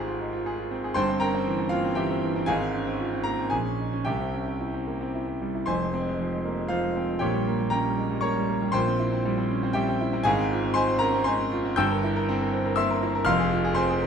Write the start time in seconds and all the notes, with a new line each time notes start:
Already playing: G#1 G#2 F4 G4 G#4 C5 G#5 C6
0.08 F4
0.21 D#4
0.33 F4
0.46 G#4
0.59 F4
0.71 C4
0.84 G#4
0.94 G1 G2 C5 G5 C6
1.09 C4
1.20 C#4 A#4 G5 A#5
1.35 C4
1.47 E3
1.59 C4
1.69 A#3 F4 F5
1.85 C4
1.95 E3 G4 E5 G5
2.10 C4
2.23 E3
2.36 C4
2.46 G#1 G#2 G#4 F5 G#5
2.61 C4
2.74 C#4
2.87 C4
3.00 F4
3.13 C4
3.24 A#3 A#4 A#5
3.39 C4
3.50 A#1 G#4 G#5
3.66 C#4
3.79 D#4
3.93 C#4
4.05 C2 G4 E5 G5
4.20 C4
4.34 C#4
4.47 C4
4.61 E4
4.74 C4
4.87 A#3
5.01 C4
5.15 E4
5.28 C4
5.41 G3
5.55 E4
5.66 F1 F2 C5 G#5 C6
5.81 G#3
5.94 C4
6.06 G#3
6.19 F3
6.32 G#3
6.45 A#3
6.57 G#3
6.68 F3 F4 C5 F5
6.84 G#3
6.96 C4
7.09 G#3
7.19 A#1 A#2 G4 C#5 G5
7.34 G3
7.47 A#3
7.60 G3
7.70 C#4 A#4 G5 A#5
7.85 G3
7.98 G#3
8.10 G3
8.21 A#3 C#5 A#5 C#6
8.36 G3
8.49 A#3
8.62 G3
8.72 A#1 A#2 C5 G5 C6
8.87 C4
8.99 E4
9.12 C4
9.25 G3
9.38 C4
9.51 C#4
9.63 C4
9.73 G3 G4 E5 G5
9.88 C4
10.01 E4
10.13 C4
10.23 G#1 G#2 G#4 F5 G#5
10.38 C4
10.51 F4
10.64 C4
10.74 G#3 C5 G#5 C6
10.89 C4
10.99 C#4 A#4 A#5
11.14 C4
11.24 G#3 C5 G#5 C6
11.39 C4
11.52 F4
11.65 C4
11.76 G1 G2 G5 E6 G6
11.91 A#4
12.04 E4
12.16 A#4
12.29 C4
12.41 A#4
12.54 C5
12.66 A#4
12.76 A#3 E5 C6 E6
12.90 A#4
13.03 E4
13.15 A#4
13.25 F1 F2 F5 C6 F6
13.40 G#4
13.52 F4
13.64 G#4
13.75 C4 C5 G#5 C6
13.89 G#4
14.02 A#4